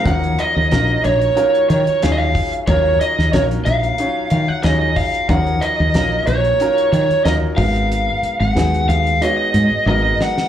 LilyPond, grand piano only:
\new Staff \with { instrumentName = "Grand piano" } { \time 4/4 \key ees \minor \tempo 4 = 92 <f ges des' ees' bes'>4 <ges des' ees' f' bes'>4 <ges des' ees' f' bes'>4 <ges des' ees' f' aes'>4 | <ges des' ees' f' bes'>4 <ges des' ees' f' bes'>4 <ges des' ees' f' des''>4 <ges des' ees' f' aes'>4 | <f ges des' ees' bes'>4 <ges des' ees' f' bes'>4 <ges des' ees' f' bes'>4 <ges des' ees' f' bes'>8 <aes ces' ees' ges' bes'>8~ | <aes ces' ees' ges' bes'>4 <aes ces' ees' ges' aes'>4 <aes ces' ees' ges' des''>4 <aes ces' ees' ges' bes'>4 | }